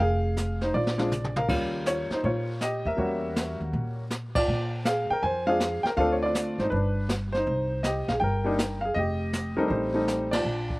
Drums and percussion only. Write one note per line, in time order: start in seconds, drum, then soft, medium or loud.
0.37 snare medium
0.37 hi-hat pedal soft
0.61 snare soft
0.87 snare soft
0.99 snare medium
1.12 hi-hat pedal soft
1.12 mid tom medium
1.24 mid tom medium
1.36 mid tom medium
1.49 brush sweep medium
1.49 kick medium
1.49 crash medium
1.86 snare medium
1.86 hi-hat pedal medium
2.11 snare soft
2.23 brush sweep soft
2.23 kick soft
2.61 snare medium
2.61 hi-hat pedal medium
2.98 brush sweep medium
2.98 kick soft
3.36 snare medium
3.36 hi-hat pedal medium
3.73 brush sweep soft
3.73 kick soft
4.10 snare medium
4.10 hi-hat pedal medium
4.35 kick medium
4.35 ride medium
4.48 brush sweep soft
4.85 snare medium
4.85 hi-hat pedal medium
5.23 brush sweep soft
5.23 kick soft
5.60 snare medium
5.60 hi-hat pedal medium
5.85 snare soft
5.98 brush sweep soft
5.98 kick soft
6.35 snare medium
6.35 hi-hat pedal medium
6.59 snare soft
6.72 brush sweep soft
6.72 kick soft
7.09 snare medium
7.09 hi-hat pedal medium
7.34 snare soft
7.46 brush sweep soft
7.46 kick soft
7.84 snare medium
7.84 hi-hat pedal medium
8.08 snare soft
8.21 brush sweep soft
8.21 kick soft
8.59 snare medium
8.59 hi-hat pedal medium
8.96 brush sweep soft
8.96 kick soft
9.33 snare medium
9.33 hi-hat pedal medium
9.70 brush sweep soft
9.70 kick soft
10.08 snare medium
10.08 hi-hat pedal medium
10.33 snare medium
10.33 ride medium
10.45 brush sweep soft
10.70 kick soft